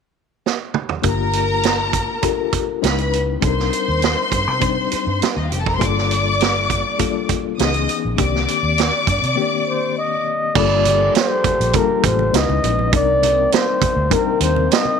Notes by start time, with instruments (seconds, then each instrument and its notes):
0.46 snare
0.74 mid tom
0.89 floor tom
1.02 fingered electric bass G1, reed electric piano A#3 D4 F4 G4 A#4, kick, closed hi-hat
1.07 string section A#4 A#5
1.33 closed hi-hat
1.63 snare, closed hi-hat
1.93 kick, closed hi-hat
2.22 reed electric piano D4 F4 G4 A4 A#4, kick, closed hi-hat
2.52 kick, closed hi-hat
2.82 fingered electric bass C#2, reed electric piano G#3 C#4 D#4 E4 B4, string section B4 B5, snare, closed hi-hat
2.98 closed hi-hat
3.13 closed hi-hat
3.40 fingered electric bass C2, reed electric piano G3 C4 D4 D#4 A4, string section C5 C6, kick, closed hi-hat
3.48 reed electric piano A#4
3.59 snare
3.73 closed hi-hat
3.88 fingered electric bass D#2
4.02 snare, closed hi-hat
4.32 fingered electric bass G2, kick, closed hi-hat
4.47 fingered electric bass C3
4.59 reed electric piano G3 C4 D4 D#4 C5, kick, closed hi-hat
4.91 muted fingered electric bass stroke, closed hi-hat
5.07 fingered electric bass G2
5.22 snare, closed hi-hat
5.36 fingered electric bass D#2, string section D#4 D#5
5.44 string section F4 F5
5.51 fingered electric bass F1, string section G4 G5, closed hi-hat
5.58 string section A4 A5
5.66 string section A#4 A#5, kick
5.75 reed electric piano G3, string section C5 C6
5.79 fingered electric bass G1, reed electric piano A#3 D4 F4 A4, kick, closed hi-hat
5.83 string section D5 D6
5.98 snare
6.11 closed hi-hat
6.40 snare, closed hi-hat
6.70 kick, closed hi-hat
6.98 reed electric piano G3 A#3 D4 F4 A4, kick, closed hi-hat
7.29 kick, closed hi-hat
7.58 fingered electric bass C#2, reed electric piano E3 B3 C#4 D#4 G#4, string section D#5 D#6, snare, closed hi-hat
7.74 closed hi-hat
7.89 closed hi-hat
8.05 fingered electric bass A#1
8.17 fingered electric bass C2, reed electric piano D#3 A#3 C4 D4 G4, string section D5 D6, kick, closed hi-hat
8.35 snare
8.48 closed hi-hat
8.63 fingered electric bass D#2
8.78 snare, closed hi-hat
9.07 fingered electric bass G2, kick, closed hi-hat
9.23 fingered electric bass C3, closed hi-hat
9.35 reed electric piano D#3 A#3 C4 D4 G4
9.68 flugelhorn C5
9.98 flugelhorn D#5
10.54 fingered electric bass G1, french horn section F3 A#3 G4 A4, reed electric piano G3 A#3 D4 F4 A4, flugelhorn D5, kick, crash
10.85 closed hi-hat, muted conga, high conga
11.15 flugelhorn C5, snare, closed hi-hat, muted conga
11.44 muted fingered electric bass stroke, kick, closed hi-hat, high conga, low conga
11.60 fingered electric bass A#1, closed hi-hat
11.73 reed electric piano G3 A#3 D4 F4 A4, flugelhorn A#4, kick, closed hi-hat, muted conga, high conga
12.03 fingered electric bass A1, flugelhorn C5, kick, closed hi-hat, muted conga
12.19 high conga
12.32 fingered electric bass C#2, french horn section C#3 E3 B3 D#5, reed electric piano G#3 C#4 D#4 E4 B4, snare, closed hi-hat, muted conga
12.36 flugelhorn D#5
12.49 fingered electric bass C#2, high conga
12.64 fingered electric bass A#1, closed hi-hat, muted conga, low conga
12.79 low conga
12.92 fingered electric bass C2, french horn section C3 D#3 A#3 C4, reed electric piano G3 C4 D4 D#4 A#4, flugelhorn D5, kick, closed hi-hat
13.23 closed hi-hat, muted conga, high conga
13.52 flugelhorn C5, snare, closed hi-hat, muted conga
13.82 muted fingered electric bass stroke, kick, closed hi-hat, muted conga, high conga, low conga
13.96 fingered electric bass D2
14.10 reed electric piano G3 C4 D4 D#4 A#4, flugelhorn A#4, kick, closed hi-hat, high conga
14.40 fingered electric bass D#2, flugelhorn C5, closed hi-hat, muted conga
14.56 high conga
14.71 flugelhorn D#5, snare, closed hi-hat, muted conga
14.85 high conga